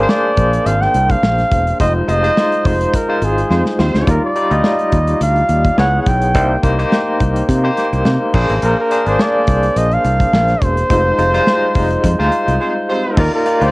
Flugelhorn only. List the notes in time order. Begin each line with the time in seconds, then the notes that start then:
Already playing: C5
0.10 D5
0.67 F5
0.82 G5
1.11 F5
1.81 D#5
2.09 D#5
2.67 C5
2.96 A#4
3.25 G#4
4.10 A#4
4.25 D5
4.53 D#5
5.23 F5
5.80 F#5
6.02 F#5
6.08 G5
8.65 A#4
8.80 A#4
9.08 C5
9.21 D5
9.78 D#5
9.94 F5
10.63 C5
13.19 A#4
13.35 A#4
13.63 C5